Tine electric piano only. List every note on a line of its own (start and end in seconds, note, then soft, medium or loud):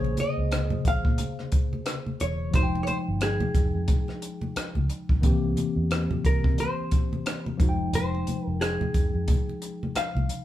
0.00 2.51 C3 soft
0.00 2.49 C#3 medium
0.00 2.50 A#3 medium
0.00 2.51 G#4 medium
2.51 5.18 F3 medium
2.51 5.19 G#3 soft
2.51 5.20 D#4 medium
2.56 2.63 F#4 soft
2.63 5.24 G5 medium
5.21 5.30 D#3 medium
5.21 7.55 A#3 medium
5.21 7.56 C4 medium
5.26 7.58 E3 medium
5.26 7.57 G4 medium
7.57 10.24 F3 medium
7.57 10.25 G#3 medium
7.57 10.26 D#4 medium
7.62 7.69 F#4 medium
7.69 10.30 G5 medium